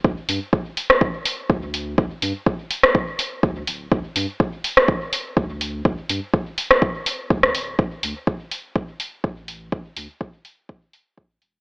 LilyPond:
<<
  \new Staff \with { instrumentName = "Sub bass" } { \clef bass \time 4/4 \key d \dorian \tempo 4 = 124 d,8 g,8 r4 a,,8 r8 d,4 | d,8 g,8 r2 d,8 d,,8 | d,8 g,8 r4 a,,8 r8 d,4 | d,8 g,8 r2 d,8 d,,8 |
a,,8 d,8 r4 e,,8 r8 a,,4 | a,,8 d,8 r2 a,,8 e,,8 | }
  \new DrumStaff \with { instrumentName = "Drums" } \drummode { \time 4/4 bd8 hho8 bd8 hho16 ss16 bd8 hho8 bd8 hho8 | bd8 hho8 bd8 hho16 ss16 bd8 hho8 bd8 hho8 | bd8 hho8 bd8 hho16 ss16 bd8 hho8 bd8 hho8 | bd8 hho8 bd8 hho16 ss16 bd8 hho8 bd16 ss16 hho8 |
bd8 hho8 bd8 hho8 bd8 hho8 bd8 hho8 | bd8 hho8 bd8 hho8 bd8 hho8 bd8 hho8 | }
>>